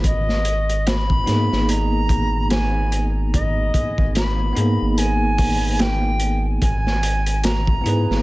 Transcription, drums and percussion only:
0.04 kick loud
0.04 closed hi-hat medium
0.29 snare soft
0.45 closed hi-hat medium
0.69 closed hi-hat soft
0.87 snare loud
0.87 closed hi-hat medium
1.10 kick medium
1.27 snare soft
1.27 closed hi-hat medium
1.53 snare soft
1.69 closed hi-hat medium
2.09 kick loud
2.09 closed hi-hat medium
2.50 snare loud
2.50 closed hi-hat medium
2.92 closed hi-hat medium
3.34 kick loud
3.34 closed hi-hat medium
3.74 kick medium
3.74 closed hi-hat medium
3.98 kick medium
4.15 snare loud
4.15 closed hi-hat medium
4.56 closed hi-hat medium
4.98 closed hi-hat medium
5.38 kick loud
5.38 open hi-hat medium
5.79 snare loud
5.79 closed hi-hat medium
6.20 closed hi-hat medium
6.62 kick loud
6.62 closed hi-hat medium
6.87 snare soft
7.03 closed hi-hat medium
7.26 closed hi-hat soft
7.44 snare loud
7.44 closed hi-hat medium
7.67 kick medium
7.86 closed hi-hat medium
8.11 snare soft

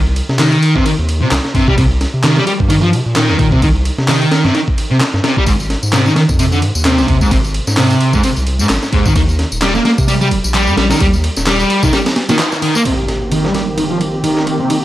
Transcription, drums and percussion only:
0.16 ride medium
0.29 snare medium
0.39 snare loud
0.39 clap loud
0.39 open hi-hat medium
0.53 ride soft
0.63 ride medium
0.76 kick loud
0.86 ride medium
1.09 ride medium
1.31 snare loud
1.31 clap loud
1.31 ride medium
1.45 snare soft
1.55 kick medium
1.55 ride medium
1.68 kick medium
1.78 kick loud
1.78 ride medium
2.01 snare soft
2.01 ride medium
2.24 snare loud
2.24 clap loud
2.24 ride medium
2.37 snare medium
2.47 ride medium
2.60 kick loud
2.70 ride medium
2.93 ride medium
3.16 snare loud
3.16 clap loud
3.16 ride medium
3.29 snare medium
3.39 kick medium
3.39 ride medium
3.52 kick loud
3.62 kick loud
3.62 ride medium
3.85 ride medium
3.98 snare medium
4.08 snare loud
4.08 clap loud
4.08 open hi-hat medium
4.22 ride soft
4.32 snare loud
4.32 ride medium
4.45 snare soft
4.55 snare medium
4.55 ride medium
4.68 kick medium
4.78 ride medium
5.00 snare loud
5.00 clap loud
5.00 ride medium
5.14 snare soft
5.24 snare loud
5.24 ride medium
5.37 kick loud
5.46 kick loud
5.46 ride medium
5.46 tambourine soft
5.60 tambourine soft
5.70 snare soft
5.70 ride medium
5.83 tambourine medium
5.93 snare loud
5.93 clap loud
5.93 ride medium
5.93 tambourine medium
6.06 snare medium
6.06 tambourine soft
6.16 snare medium
6.16 ride medium
6.29 kick loud
6.29 tambourine medium
6.39 ride medium
6.39 tambourine soft
6.52 tambourine soft
6.62 ride medium
6.75 tambourine medium
6.85 snare loud
6.85 clap loud
6.85 ride medium
6.98 snare medium
6.98 tambourine soft
7.08 kick medium
7.08 ride medium
7.21 kick medium
7.21 tambourine medium
7.31 kick loud
7.31 ride medium
7.31 tambourine medium
7.44 tambourine soft
7.54 ride medium
7.67 snare medium
7.67 tambourine medium
7.77 snare loud
7.77 clap loud
7.77 open hi-hat medium
7.77 tambourine soft
7.90 ride soft
7.90 tambourine soft
8.00 ride medium
8.13 kick medium
8.13 tambourine medium
8.23 ride medium
8.23 tambourine soft
8.36 tambourine soft
8.47 ride medium
8.59 tambourine medium
8.69 snare loud
8.69 clap loud
8.69 ride medium
8.69 tambourine soft
8.83 snare soft
8.83 tambourine soft
8.93 kick medium
8.93 ride medium
9.06 kick loud
9.06 tambourine medium
9.16 kick loud
9.16 ride medium
9.16 tambourine medium
9.29 tambourine soft
9.39 snare soft
9.39 ride medium
9.52 tambourine medium
9.62 snare loud
9.62 clap loud
9.62 ride medium
9.62 tambourine medium
9.75 snare medium
9.75 tambourine soft
9.85 snare medium
9.85 ride medium
9.98 kick loud
9.98 tambourine medium
10.08 ride medium
10.08 tambourine medium
10.21 tambourine soft
10.31 ride medium
10.44 tambourine medium
10.54 clap medium
10.54 ride medium
10.54 tambourine soft
10.67 tambourine soft
10.77 snare loud
10.77 ride medium
10.90 snare loud
10.90 ride medium
10.90 tambourine medium
11.00 kick loud
11.00 ride medium
11.00 tambourine medium
11.13 tambourine soft
11.24 ride medium
11.36 snare medium
11.36 tambourine medium
11.46 snare loud
11.46 clap loud
11.46 open hi-hat medium
11.46 tambourine medium
11.60 ride soft
11.60 tambourine soft
11.70 ride medium
11.83 kick loud
11.83 tambourine medium
11.93 snare loud
11.93 ride medium
11.93 tambourine medium
12.06 snare loud
12.06 ride medium
12.06 tambourine soft
12.16 snare loud
12.16 ride medium
12.29 snare loud
12.29 ride medium
12.29 tambourine medium
12.39 snare loud
12.39 clap loud
12.39 ride medium
12.39 tambourine medium
12.52 snare soft
12.52 tambourine soft
12.62 ride medium
12.75 tambourine medium
12.85 ride medium
13.08 snare soft
13.08 ride medium
13.31 ride medium
13.45 snare soft
13.54 snare medium
13.54 ride medium
13.78 ride medium
14.01 ride medium
14.24 ride medium
14.37 snare soft
14.47 ride medium
14.70 ride medium

